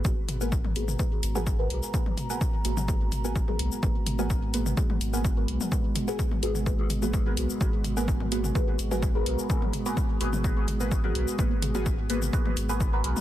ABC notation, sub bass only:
X:1
M:4/4
L:1/8
Q:1/4=127
K:G#m
V:1 name="Sub bass" clef=bass
G,,,4 z G,,,2 B,,, | z3 G,,,4 B,,, | G,,,4 z G,,,2 B,,, | z3 G,,,4 B,,, |
G,,,4 z G,,,2 B,,, | z3 G,,,4 B,,, | G,,,4 z G,,,2 B,,, |]